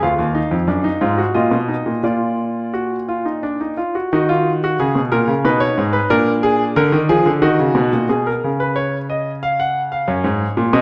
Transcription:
grand piano
0.02 D2 F4 F5
0.19 D#2
0.35 D#4
0.51 F2
0.67 F#2 D4
0.84 D#4
1.01 G#2 F4
1.18 F#4
1.34 A#2 F4 D#5
1.51 B2
1.69 D#4
1.86 A#2
2.03 A#2 F4 D5
2.74 F#4
3.08 F4
3.25 D#4
3.43 D4
3.61 D#4
3.77 F4
3.95 F#4
4.13 D#3 D#4 F#4
4.29 F4
4.64 F#4
4.79 C#3 G#4
4.95 B2
5.12 A#2 A#4
5.28 C#3
5.45 B2 D#4 B4
5.60 C#5
5.78 G#2
5.93 B4
6.10 A#2 D4 A#4
6.43 G#4
6.76 D3 A#4
6.92 D#3
7.09 F3 G#4
7.26 D3
7.42 D#3 D#4 F#4
7.60 C#3
7.75 B2
7.93 A#2
8.09 B2 G#4
8.27 A#4
8.44 C#3
8.60 B4
8.76 C#5
9.10 D#5
9.43 F5
9.60 F#5
9.92 F5
10.08 F#2 C#5
10.24 G#2
10.57 A#2
10.73 B2 D#5

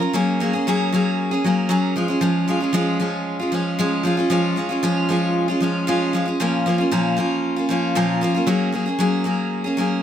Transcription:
steel-string acoustic guitar
0.00 C#4 F4 A#4
0.13 F#3 A#3 C#4 G#4
0.40 F#3 A#3 C#4 G#4
0.53 A#3 C#4 G#4
0.67 F#3 A#3 C#4 G#4
0.92 F#3 A#3 C#4 G#4
1.31 A#3 C#4 G#4
1.44 F#3 A#3 C#4 G#4
1.69 F#3 A#3 C#4 G#4
1.96 F3 G#3 C#4 F4
2.08 G#3 C#4 F4
2.21 F3 G#3 C#4 F4
2.48 F3 G#3 C#4 F4
2.61 G#3 C#4 F4
2.73 F3 G#3 C#4 F4
3.00 F3 G#3 C#4 F4
3.39 G#3 C#4 F4
3.52 F3 G#3 C#4 F4
3.79 F3 G#3 C#4 F4
4.03 F3 G#3 C#4 F4
4.17 G#3 C#4 F4
4.30 F3 G#3 C#4 F4
4.56 F3 G#3 C#4 F4
4.69 G#3 C#4 F4
4.83 F3 G#3 C#4 F4
5.09 F3 G#3 C#4 F4
5.48 G#3 C#4 F4
5.60 F3 G#3 C#4 F4
5.87 F3 G#3 C#4 F4
6.13 F3 G#3 C#4 F4
6.26 G#3 C#4 F4
6.40 A#2 F3 A#3 C#4 F4
6.66 F3 A#3 C#4 F4
6.78 A#3 C#4 F4
6.91 A#2 F3 A#3 C#4 F4
7.17 F3 A#3 C#4 F4
7.56 A#3 C#4 F4
7.69 F3 A#3 C#4 F4
7.95 A#2 F3 A#3 C#4 F4
8.21 F3 A#3 C#4 F4
8.34 A#3 C#4 F4
8.47 F#3 A#3 C#4 G#4
8.72 F#3 A#3 C#4 G#4
8.86 A#3 C#4 G#4
8.99 F#3 A#3 C#4 G#4
9.24 F#3 A#3 C#4 G#4
9.64 A#3 C#4 G#4
9.77 F#3 A#3 C#4 G#4

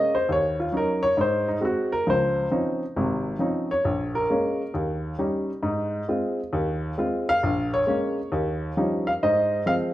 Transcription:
grand piano
Already playing: G#3 A#3 C#4 D#5
0.15 C5
0.29 D#2 C#5
0.60 F4
0.72 F#3 C#4 D#4
0.77 A#4
1.03 C#5
1.17 G#2 C5
1.48 D#4
1.61 G#3 C4 F#4
1.65 F#4
1.92 A#4
2.07 C#2 F3 C5
2.51 F3 C4 C#4 D#4
2.96 G#1 C3
3.39 F3 C4 C#4 D#4
3.71 C#5
3.85 A#1
4.15 A#4
4.30 G#3 A#3 C#4
4.74 D#2
5.19 G3 C#4 D#4
5.63 G#2
6.09 G#3 C4 F4
6.53 D#2
6.98 G#3 C4 F4
7.29 F5
7.43 A#1
7.74 C#5
7.87 G#3 A#3 C#4
8.32 D#2
8.77 F3 G3 C#4 D#4
9.07 F5
9.23 G#2 C5 D#5
9.66 F3 G#3 C4 F5

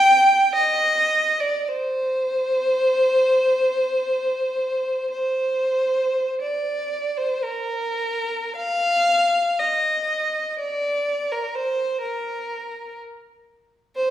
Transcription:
violin
Already playing: G5
0.55 D#5
1.40 D5
1.69 C5
5.11 C5
6.41 D5
7.18 C5
7.43 A#4
8.56 F5
9.59 D#5
10.59 D5
11.32 A#4
11.55 C5
12.02 A#4
13.96 C5

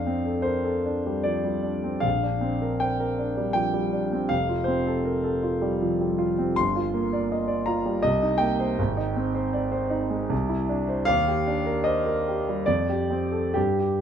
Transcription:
grand piano
Already playing: F2 D4 F5
0.07 C4
0.25 A4
0.42 A#4 C5
0.65 A4
0.86 D4
1.06 G3
1.23 F3 D5
1.44 G3
1.63 D4
1.84 C4
2.00 A#1 F5
2.23 D4
2.41 C4
2.62 A#4
2.80 C5 G5
3.00 A#4
3.19 D4
3.37 G3
3.53 F3 G5
3.74 G3
3.93 D4
4.12 C4
4.29 F1 F5
4.49 F4
4.64 C4 C5
4.87 A4
5.05 A#4
5.24 A4
5.43 F4
5.62 G3
5.82 F3
6.01 G3
6.18 F4
6.38 C4
6.56 G1 C6
6.76 F4
6.94 A#3
7.13 D5
7.32 D#5
7.48 D5
7.66 F4 A#5
7.86 G3
8.03 C2 D#5
8.22 D#4
8.38 A#3 G5
8.60 C5
8.79 G#1
8.97 D#4
9.16 C4
9.34 C5
9.53 D5
9.72 C5
9.90 D#4
10.10 G#3
10.30 C2
10.49 E4
10.69 D4
10.89 C5
11.05 D#2 F5
11.28 G4
11.47 D4
11.66 A#4
11.84 C5 D#5
12.06 A#4
12.28 G4
12.49 G3
12.66 F2 D5
12.89 G4
13.10 C4
13.32 A4
13.54 G2 G4
13.80 G4

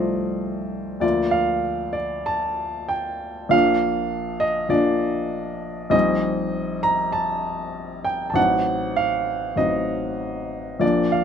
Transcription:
upright piano
Already playing: C2 F3 A3 F4 C5 D5 D#5
1.00 D2 F3 A#3 F4 D5
1.31 F5
1.93 D5
2.26 A5
2.88 G5
3.49 A#1 F3 A#3 D4 F5
4.40 D#5
4.69 A#1 F3 A#3 D4 D5
5.90 A#1 G3 C4 D#4 D#5
6.83 A#5
7.12 A5
8.04 G5
8.30 A1 A5
8.34 F#3 C4 D#4 F#5
8.96 F5
9.56 A1 F#3 C4 D#4 D#5
10.80 A#1 F3 A#3 D4 D5
11.12 F5

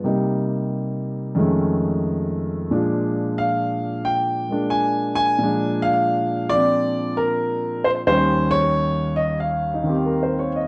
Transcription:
grand piano
0.04 C3 G3 A#3 D#4
1.35 F2 D#3 G#3 A3
1.40 C#4
2.71 A#2 F3 G#3 D4
3.38 F5
4.05 G5
4.49 G#3 A#3 D4
4.70 G#5
5.15 G#5
5.38 A#2 F3 G#3
5.43 D4
5.82 F5
6.49 F3 C4 D5
7.17 A#4
7.84 C5
8.07 D#2 D#3 G3 C#4 C5
8.51 C#5
9.16 D#5
9.40 F5
9.74 D#4
9.84 D#3 C4
9.89 G4
10.06 A#4
10.23 C5
10.39 C#5
10.56 D#5

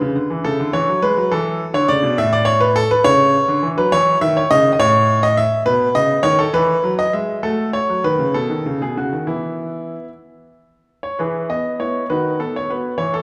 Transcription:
grand piano
Already playing: E4 B4
0.01 C#3
0.15 D3
0.30 E3
0.44 C#3 E4 A4
0.60 D3
0.73 E3 C#5
0.89 F#3
1.02 G#3 B4
1.17 F#3
1.32 E3 A4
1.74 D3 C#5
1.88 C#3 D5
2.03 B2
2.18 A2 E4 E5
2.33 D5
2.45 C#5
2.60 B4
2.76 A4
2.91 B4
3.04 C#3 C#5
3.48 D3
3.63 E3
3.77 F#3 B4
3.92 E3 E4 C#5
4.21 D#3 E5
4.37 C#5
4.51 C#3 D#5
4.73 D#5
4.79 A2 C#5
5.23 D#5
5.37 E5
5.66 B2 F#4 B4
5.95 C#3 D#5
6.23 D#3 C#5
6.39 A4
6.53 E3 B4
6.84 F#3
6.99 D#5
7.13 G#3 E5
7.43 A3 F#4 A4
7.73 C#5
7.89 F#3
8.04 D#3 B4
8.19 C#3
8.34 B2 A4
8.50 D#3
8.66 C#3
8.82 B2 G#4
8.97 C#3 F#4
9.13 D#3
9.27 E3 B3 E4
11.03 C#5
11.19 E3 E4 G#4 B4
11.50 B3 D#5
11.80 B3 E4 C#5
12.10 D#3 D#4 F#4 B4
12.40 B3 A4
12.56 C#5
12.70 B3 F#4 B4
12.98 E3 C#5
13.14 A4

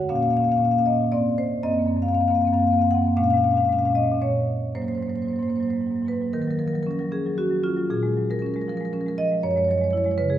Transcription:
marimba
0.09 A#2 A#3 C#4 F5
0.15 A#3 C#4 F5
0.21 A#2 F5
0.25 A#3 C#4
0.30 A#2 A#3 C#4 F5
0.37 A#2 A#3 F5
0.41 C#4 F5
0.49 A#2 A#3 C#4 F5
0.56 A#2 A#3 C#4 F5
0.63 A#3 C#4 F5
0.69 A#2 A#3 C#4 F5
0.78 A#2 A#3 C#4 F5
0.86 A#3 C#4 D#5
0.90 A#2 C#4
0.95 A#3
1.00 A#2 C#4
1.04 A#3
1.12 G#2 A#3 C4 D5
1.38 C5
1.63 F#2 A#3 C4 D#5
1.70 F#2 A#3 C4
1.79 A#3 C4
1.86 F#2 A#3 C4
1.96 F#2 A#3 C4
2.02 A#3 C4 F5
2.08 F#2 F5
2.12 A#3 C4 F5
2.20 F#2 A#3 C4 F5
2.28 F#2 A#3 C4 F5
2.35 A#3 C4 F5
2.41 F#2 F5
2.45 A#3 C4 F5
2.53 F#2 A#3 C4 F5
2.60 A#3 C4 F5
2.64 F#2 F5
2.71 F#2 A#3 C4 F5
2.79 A#3 C4 F5
2.84 F#2 C4
2.89 A#3 F#5
2.94 F#2 A#3 C4
3.02 C4
3.07 F#2 A#3
3.16 A#2 G#3 C#4 F5
3.24 A#2 G#3 C#4 F5
3.30 A#2 G#3 C#4 F5
3.37 C#4 F5
3.42 A#2 G#3 F5
3.48 G#3 C#4 F5
3.54 A#2 C#4 F5
3.60 A#2 G#3
3.65 C#4 F5
3.69 G#3 F5
3.73 A#2 C#4
3.79 G#3 C#4 F5
3.84 A#2 G#3 F5
3.90 A#2 C#4
3.95 G#3 C#4 D#5
4.03 A#2 G#3 C#4
4.11 A#2 G#3 C#4
4.22 A#2 G#3 C#4 C#5
4.75 G#2 F#3 A#3 C5
4.82 F#3 A#3 C5
4.87 G#2 C5
4.92 F#3 A#3 C5
4.97 G#2 F#3 A#3
5.02 C5
5.07 G#2 F#3 A#3 C5
5.15 G#2 F#3 A#3 C5
5.22 F#3 A#3 C5
5.28 G#2 A#3 C5
5.33 F#3 C5
5.38 G#2 F#3 A#3
5.43 C5
5.48 G#2 F#3 A#3 C5
5.56 A#3 C5
5.60 G#2 F#3 C5
5.65 F#3 A#3
5.70 G#2 A#3 C5
5.77 G#2 F#3
5.82 A#3
5.87 G#2 F#3 A#3
5.96 F#3 A#3
6.02 G#2 F#3
6.06 A#3 B4
6.12 G#2 F#3 A#3
6.21 G#2 F#3 A#3
6.33 D#3 A#4
6.42 A#4
6.47 F#3 A#4
6.59 F3 A#4
6.67 A#4
6.73 F#3 A#4
6.83 C#4 A#4
6.91 A#4
6.99 F#3 A#4
7.12 C#4 G#4
7.26 F#3
7.38 C#4 F#4
7.51 F#3
7.63 C#4 F4
7.77 F#3
7.90 A#2 G#4
8.03 G#3
8.17 F#3
8.30 G#3 A#4
8.39 C#4 A#4
8.46 A#4
8.54 G#3 A#4
8.61 A#4
8.68 F3 A#4
8.77 G#3 A#4
8.85 A#4
8.93 C#4 A#4
9.01 A#4
9.06 G#3 A#4
9.18 F3 D#5
9.31 G#3
9.43 F#2 C#5
9.51 C#5
9.56 G#3 C#5
9.64 F#3 C#5
9.71 C#5
9.78 G#3 C#5
9.84 C#5
9.91 E4 C#5
9.98 C#5
10.04 G#3 C#5
10.11 C#5
10.18 C#3 B4
10.30 G#3 G#4

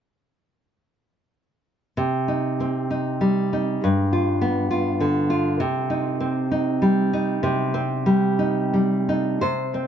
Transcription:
nylon-string guitar
1.97 C3
2.28 D#4
2.60 C4
2.91 D#4
3.21 G3
3.53 D#4
3.84 G2
4.13 F4
4.41 B3
4.71 F4
5.00 D3
5.30 F4
5.60 C3
5.90 D#4
6.20 C4
6.51 D#4
6.82 G3
7.13 D#4
7.43 C3
7.74 C4
8.06 G3
8.39 D#4
8.74 G3
9.09 D#4
9.41 C3 C5
9.74 C4

